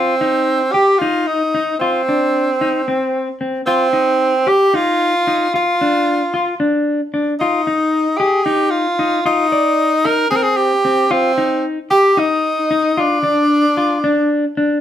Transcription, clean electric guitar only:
0.00 0.14 F4 medium
0.21 0.61 D#4 medium
0.74 0.94 G4 medium
1.02 1.41 D#4 medium
1.55 1.74 D#4 medium
1.81 2.01 F4 medium
2.09 2.48 D4 medium
2.61 2.81 D#4 medium
2.88 3.28 C4 medium
3.41 3.61 C4 medium
3.67 3.87 F4 medium
3.93 4.34 D#4 medium
4.47 4.67 G4 medium
4.74 5.14 D#4 medium
5.27 5.47 D#4 medium
5.54 5.74 F4 medium
5.81 6.21 D4 medium
6.34 6.54 F4 medium
6.60 7.00 D4 medium
7.14 7.34 D4 medium
7.41 7.61 F4 medium
7.67 8.07 D#4 medium
8.20 8.40 G4 medium
8.46 8.86 D#4 medium
8.99 9.19 D#4 medium
9.26 9.46 F4 medium
9.52 9.93 D5 medium
10.05 10.26 D#4 medium
10.32 10.72 C4 medium
10.85 11.05 C4 medium
11.11 11.31 F4 medium
11.38 11.78 D#4 medium
11.91 12.11 G4 medium
12.17 12.58 D#4 medium
12.71 12.91 D#4 medium
12.97 13.18 F4 medium
13.24 13.64 D4 medium
13.77 13.98 F4 medium
14.04 14.44 D4 medium
14.57 14.78 D4 medium

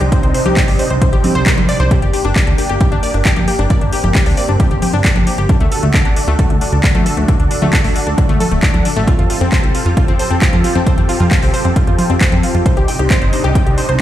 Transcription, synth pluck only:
0.01 0.05 G4 medium
0.12 0.16 C5 medium
0.23 0.30 C5 medium
0.34 0.41 C5 medium
0.46 0.50 G4 loud
0.57 0.63 G5 medium
0.68 0.72 G4 medium
0.79 0.83 C5 medium
0.90 0.97 C5 medium
1.02 1.08 C5 medium
1.13 1.17 G4 loud
1.24 1.28 C4 medium
1.35 1.39 C5 loud
1.46 1.49 A#4 medium
1.57 1.62 C6 medium
1.69 1.73 D5 loud
1.80 1.84 C5 loud
1.91 1.95 G4 medium
2.02 2.09 G4 medium
2.13 2.20 G4 medium
2.25 2.29 D4 loud
2.36 2.42 D5 medium
2.47 2.51 D4 medium
2.58 2.63 G4 medium
2.69 2.76 G4 medium
2.81 2.87 G4 medium
2.92 2.96 D4 loud
3.03 3.10 D5 medium
3.14 3.19 D4 medium
3.25 3.30 G4 medium
3.37 3.43 G4 medium
3.48 3.54 G4 medium
3.59 3.63 D4 loud
3.70 3.77 D5 medium
3.81 3.86 D4 medium
3.93 3.97 G4 medium
4.04 4.10 G4 medium
4.15 4.22 G4 medium
4.26 4.31 D4 loud
4.38 4.44 D5 medium
4.49 4.53 D4 medium
4.60 4.64 G4 medium
4.71 4.78 G4 medium
4.82 4.89 G4 medium
4.94 4.98 D4 loud
5.05 5.11 D5 medium
5.16 5.20 D4 medium
5.27 5.31 G4 medium
5.38 5.45 G4 medium
5.49 5.56 D4 medium
5.61 5.65 A3 loud
5.72 5.78 A4 medium
5.83 5.87 A3 medium
5.94 5.98 D4 medium
6.05 6.12 D4 medium
6.17 6.23 D4 medium
6.28 6.32 A3 loud
6.39 6.45 A4 medium
6.50 6.54 A3 medium
6.61 6.66 D4 medium
6.73 6.79 D4 medium
6.84 6.90 D4 medium
6.95 6.99 A3 loud
7.06 7.13 A4 medium
7.17 7.22 A3 medium
7.28 7.33 D4 medium
7.40 7.46 D4 medium
7.51 7.57 D4 medium
7.62 7.66 A3 loud
7.73 7.80 A4 medium
7.84 7.89 A3 medium
7.96 8.00 D4 medium
8.07 8.13 D4 medium
8.18 8.24 D4 medium
8.29 8.33 A3 loud
8.40 8.47 A4 medium
8.52 8.56 A3 medium
8.63 8.67 D4 medium
8.74 8.80 D4 medium
8.85 8.92 D4 medium
8.96 9.01 A3 loud
9.08 9.12 F4 medium
9.19 9.25 F4 medium
9.30 9.36 F4 medium
9.41 9.45 C4 loud
9.52 9.59 C5 medium
9.64 9.68 C4 medium
9.75 9.79 F4 medium
9.86 9.92 F4 medium
9.97 10.04 F4 medium
10.08 10.13 C4 loud
10.19 10.26 C5 medium
10.31 10.35 C4 medium
10.42 10.46 F4 medium
10.53 10.60 F4 medium
10.64 10.71 F4 medium
10.75 10.80 C4 loud
10.87 10.93 C5 medium
10.98 11.02 C4 medium
11.09 11.13 F4 medium
11.20 11.27 F4 medium
11.31 11.38 F4 medium
11.43 11.47 C4 loud
11.54 11.60 C5 medium
11.65 11.69 C4 medium
11.76 11.81 F4 medium
11.87 11.94 F4 medium
11.99 12.05 F4 medium
12.10 12.14 C4 loud
12.21 12.28 C5 medium
12.32 12.37 C4 medium
12.43 12.48 F4 medium
12.55 12.61 F4 medium
12.66 12.72 C5 medium
12.77 12.81 G4 loud
12.88 12.95 G5 medium
12.99 13.04 G4 medium
13.10 13.15 C5 medium
13.22 13.28 C5 medium
13.33 13.39 C5 medium
13.44 13.48 G4 loud
13.55 13.62 G5 medium
13.66 13.71 G4 medium
13.78 13.82 C5 medium
13.89 13.95 C5 medium

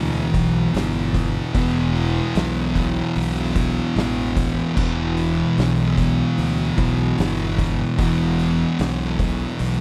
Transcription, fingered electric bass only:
0.00 0.26 D2 loud
0.34 0.66 B1 medium
0.74 1.38 G1 loud
1.55 2.19 E1 medium
2.35 2.99 B1 loud
3.16 3.80 B1 medium
3.96 4.60 A1 loud
4.77 5.41 E1 medium
5.57 6.22 B1 medium
6.38 6.70 D2 medium
6.78 7.10 B1 medium
7.18 7.83 G1 loud
7.99 8.63 E1 loud
8.79 9.43 B1 loud
9.60 9.81 B1 loud

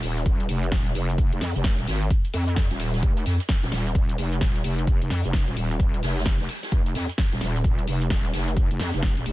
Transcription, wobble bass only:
0.03 0.48 D#1 loud
0.49 0.71 F1 loud
0.72 0.94 D#1 loud
0.95 1.30 F1 loud
1.32 1.40 F1 loud
1.41 1.53 F2 loud
1.56 1.76 F1 loud
1.79 1.86 D#1 loud
1.87 2.09 G#1 loud
2.34 2.69 F2 loud
2.71 3.01 D#1 loud
3.03 3.25 F1 medium
3.26 3.38 F2 loud
3.63 3.71 D#1 loud
3.72 4.17 D#1 loud
4.18 4.40 F1 loud
4.41 4.63 D#1 loud
4.64 4.99 F1 medium
5.02 5.09 F1 loud
5.11 5.22 F2 loud
5.25 5.46 F1 loud
5.48 5.55 D#1 loud
5.57 6.01 D#1 loud
6.03 6.25 F1 loud
6.26 6.38 F1 loud
6.40 6.48 F1 loud
6.72 6.94 F1 medium
6.95 7.07 F2 loud
7.33 7.40 D#1 medium
7.41 7.86 D#1 loud
7.87 8.09 F1 loud
8.11 8.32 D#1 loud
8.34 8.69 F1 loud
8.71 8.78 F1 loud
8.80 8.92 F2 loud
8.94 9.15 F1 loud
9.17 9.25 D#1 loud
9.26 9.32 F1 loud

